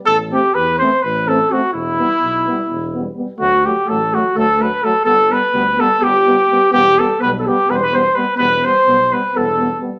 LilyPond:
<<
  \new Staff \with { instrumentName = "Clarinet" } { \time 7/8 \key e \minor \tempo 4 = 126 a'8 g'8 b'8 c''8 b'8 a'8 fis'8 | e'2. r8 | fis'8 g'8 a'8 fis'8 a'8 b'8 a'8 | a'8 b'4 a'8 g'4. |
g'8 a'8 b'16. a'32 g'8 b'32 c''32 b'16 c''8 b'8 | b'8 c''4 b'8 a'8.~ a'32 r8 r32 | }
  \new Staff \with { instrumentName = "Trumpet" } { \time 7/8 \key e \minor a'8 g'8 b'8 c''8 b'8 a'8 fis'8 | e'2. r8 | fis'8 g'8 a'8 fis'8 a'8 b'8 a'8 | a'8 b'4 a'8 g'4. |
g'8 a'8 b'16. a'32 g'8 b'32 c''32 b'16 c''8 b'8 | b'8 c''4 b'8 a'8.~ a'32 r8 r32 | }
  \new Staff \with { instrumentName = "Euphonium" } { \time 7/8 \key e \minor r8 c'8 r8 c'8 r8 c'8 c'8 | r8 b8 r8 b8 r8 b8 b8 | a8 a8 a8 a8 a8 a8 a8 | b8 b8 b8 b8 b8 b8 b8 |
b8 b8 b8 b8 b8 b8 b8 | b8 b8 b8 b8 b8 b8 b8 | }
  \new Staff \with { instrumentName = "Euphonium" } { \clef bass \time 7/8 \key e \minor r8 a8 r8 a8 r8 a8 a8 | r8 g8 r8 g8 r8 g8 g8 | fis8 fis8 fis8 fis8 fis8 fis8 fis8 | g8 g8 g8 g8 g8 g8 g8 |
g8 g8 g8 g8 g8 g8 g8 | g8 g8 g8 g8 g8 g8 g8 | }
  \new Staff \with { instrumentName = "Tuba" } { \clef bass \time 7/8 \key e \minor a,,4 e,4 a,,4. | e,,4 b,,4 e,,4. | d,4 a,,4 d,4. | g,,4 d,4 g,,4. |
e,,4 b,,4 e,,4. | e,,4 b,,4 e,,4. | }
>>